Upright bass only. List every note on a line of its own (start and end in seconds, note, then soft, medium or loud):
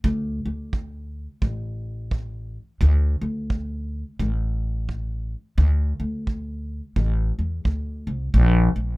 0.04 0.39 D2 loud
0.46 1.25 D2 medium
1.42 2.56 A1 medium
2.81 3.15 D2 loud
3.21 4.02 D2 medium
4.20 5.33 A1 loud
5.58 5.92 D2 loud
6.00 6.79 D2 medium
6.96 7.30 A1 loud
7.39 7.63 E2 medium
7.65 8.03 D2 medium
8.07 8.31 C2 medium
8.34 8.68 A#1 loud
8.76 8.97 A#1 medium